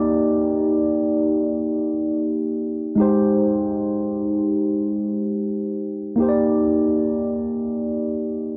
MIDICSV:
0, 0, Header, 1, 2, 480
1, 0, Start_track
1, 0, Key_signature, -3, "major"
1, 0, Tempo, 500000
1, 8226, End_track
2, 0, Start_track
2, 0, Title_t, "Tine electric piano"
2, 0, Program_c, 0, 4
2, 0, Control_c, 0, 64, 127
2, 0, Note_on_c, 0, 58, 71
2, 0, Note_on_c, 0, 63, 62
2, 0, Note_on_c, 0, 67, 61
2, 0, Note_on_c, 0, 74, 75
2, 2812, Note_off_c, 0, 58, 0
2, 2822, Note_off_c, 0, 63, 0
2, 2832, Note_off_c, 0, 67, 0
2, 2837, Note_on_c, 0, 56, 66
2, 2857, Note_on_c, 0, 63, 62
2, 2871, Note_off_c, 0, 74, 0
2, 2875, Control_c, 0, 64, 0
2, 2879, Note_on_c, 0, 67, 62
2, 2893, Note_on_c, 0, 72, 78
2, 3062, Control_c, 0, 64, 127
2, 5884, Note_off_c, 0, 56, 0
2, 5894, Note_off_c, 0, 63, 0
2, 5905, Note_off_c, 0, 67, 0
2, 5912, Note_off_c, 0, 72, 0
2, 5913, Note_on_c, 0, 58, 72
2, 5933, Note_on_c, 0, 63, 61
2, 5946, Control_c, 0, 64, 0
2, 5953, Note_on_c, 0, 67, 61
2, 5972, Note_on_c, 0, 72, 60
2, 6024, Note_off_c, 0, 72, 0
2, 6035, Note_on_c, 0, 74, 74
2, 6103, Control_c, 0, 64, 127
2, 8226, Note_off_c, 0, 58, 0
2, 8226, Note_off_c, 0, 63, 0
2, 8226, Note_off_c, 0, 67, 0
2, 8226, Note_off_c, 0, 74, 0
2, 8226, End_track
0, 0, End_of_file